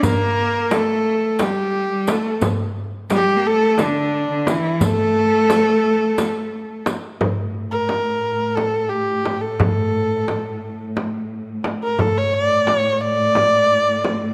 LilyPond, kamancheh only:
\new Staff \with { instrumentName = "Kamancheh" } { \time 7/8 \tempo 4 = 88 bes'4 a'4 g'4 a'8 | r4 g'8 a'8 d'4 e'8 | a'2. r8 | r8. bes'4~ bes'16 a'8 g'8. a'16~ |
a'4.~ a'16 r4. bes'16 | a'16 cis''16 d''8 cis''8 d''2 | }